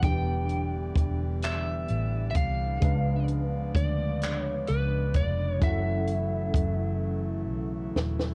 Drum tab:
HH |x-x-x-x-x-x-|x-x-x-x-x-x-|x-x-x-------|
CP |------x-----|------x-----|------------|
SD |------------|------------|----------oo|
BD |o---o-----o-|o---o-----o-|o---o-------|